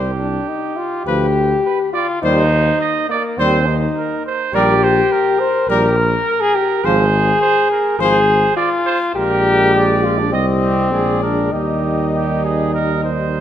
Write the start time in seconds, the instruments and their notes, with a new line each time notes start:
Already playing: bass trombone C2, trombone G3, trumpet G4, cornet C5
0.19 french horn D4
0.48 french horn D#4
0.76 french horn F4
1.06 bass trombone D2, trombone F3, french horn G4, cornet B4
1.65 trumpet B4
1.93 french horn F4, trumpet D5
2.22 bass trombone D#2, trombone G3, french horn D#4, trumpet C5, cornet C5
2.80 trumpet D#5
3.09 french horn A#3, trumpet D5
3.38 bass trombone D#2, trombone G3, french horn C4, trumpet C5, cornet C5
3.67 french horn D#4
3.97 trumpet A#4
4.26 trumpet C5
4.53 bass trombone A#1, trombone G3, french horn G4, cornet A#4, trumpet D5
4.83 trumpet C5
5.12 trumpet A#4
5.40 french horn C5
5.69 bass trombone A#1, trombone G3, trumpet G4, french horn A#4, cornet A#4
5.98 trumpet A#4
6.41 french horn G#4
6.55 french horn G4
6.84 bass trombone G#1, trombone F3, french horn G#4, trumpet C5, cornet C5
7.42 trumpet C5
7.71 trumpet A#4
7.99 bass trombone G#1, trombone F3, french horn G#4, trumpet C5, cornet C5
8.56 french horn F4, trumpet D5
8.86 trumpet C5
9.15 bass trombone A#1, trombone G#3, french horn G4, trumpet A#4, cornet D5
9.74 trumpet D5
10.04 french horn F4
10.18 french horn D4
10.32 bass trombone C2, trombone G3, french horn C4, cornet D#5, trumpet D#5
10.63 trumpet G4
10.92 bass trombone A#1, trombone G#3, trumpet G#4, cornet D5
11.22 french horn D4, trumpet A#4
11.52 bass trombone D#2, trombone G3, french horn D#4, trumpet G4, cornet D#5
12.14 trumpet G4
12.44 trumpet G#4
12.74 trumpet A#4
13.04 trumpet C5